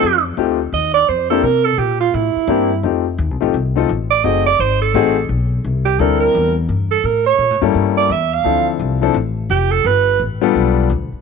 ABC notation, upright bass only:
X:1
M:4/4
L:1/8
Q:"Swing" 1/4=171
K:Cmix
V:1 name="Upright bass" clef=bass
F,,2 D,,2 _E,,2 F,,2 | C,2 B,,2 A,, z G,,2 | F,,2 (3_E,, C,, A,,, C,,2 A,,,2 | ^F,,,2 _A,,,2 =A,,,2 =B,,,2 |
C,,2 D,,2 E,,2 G,,2 | A,,2 (3B,, A,, G,, G,,2 E,,2 | D,,2 C,,2 A,,,2 F,,,2 | G,,,2 A,,,2 =B,,,2 D,, z |]